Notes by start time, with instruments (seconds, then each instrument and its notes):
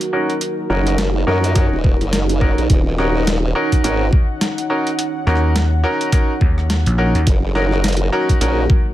Already playing: analog synth pad D#4 F#4 A#4
0.01 closed hi-hat
0.13 grand piano C#4 D#4 F#4 A#4
0.30 closed hi-hat
0.41 closed hi-hat
0.70 wobble bass F#1, grand piano C#4 D#4 F#4 A#4
0.87 closed hi-hat
0.98 snare, closed hi-hat
1.27 wobble bass F#2, grand piano C#4 D#4 F#4 A#4
1.44 closed hi-hat
1.55 grand piano C#4 D#4 F#4 A#4, kick, closed hi-hat
1.72 wobble bass D#1
1.84 kick
2.01 wobble bass F#1, closed hi-hat
2.13 snare, closed hi-hat
2.29 closed hi-hat
2.41 grand piano C#4 D#4 F#4 A#4, kick
2.58 wobble bass A#1, closed hi-hat
2.70 wobble bass D#1, analog synth pad C#5 F#5, kick, closed hi-hat
2.98 grand piano C#4 D#4 F#4 A#4, cross-stick
3.15 cross-stick
3.18 cross-stick
3.23 cross-stick
3.27 cross-stick, snare, closed hi-hat
3.33 cross-stick
3.37 cross-stick
3.55 grand piano C#4 D#4 F#4 A#4
3.72 kick, closed hi-hat
3.84 wobble bass G#1, grand piano C#4 D#4 F#4 A#4, closed hi-hat
4.13 kick
4.41 snare, closed hi-hat
4.58 closed hi-hat
4.70 grand piano C#4 D#4 F#4 A#4
4.87 closed hi-hat
4.99 closed hi-hat
5.27 slap bass D#2, grand piano C#4 D#4 F#4 A#4, cross-stick
5.36 cross-stick
5.56 snare, closed hi-hat
5.84 grand piano C#4 D#4 F#4 A#4
6.01 closed hi-hat
6.12 grand piano C#4 D#4 F#4 A#4, kick, closed hi-hat
6.41 slap bass D#2, kick
6.58 cross-stick
6.70 snare, closed hi-hat
6.86 slap bass A#1, closed hi-hat
6.98 grand piano C#4 D#4 F#4 A#4
7.15 slap bass D#2, closed hi-hat
7.27 wobble bass F#1, analog synth pad D#4 F#4 A#4, kick, closed hi-hat
7.55 grand piano C#4 D#4 F#4 A#4, cross-stick
7.72 cross-stick
7.84 snare, closed hi-hat
7.88 closed hi-hat
7.93 closed hi-hat
7.97 closed hi-hat
8.12 grand piano C#4 D#4 F#4 A#4
8.29 kick, closed hi-hat
8.41 wobble bass A#1, grand piano C#4 D#4 F#4 A#4, closed hi-hat
8.70 kick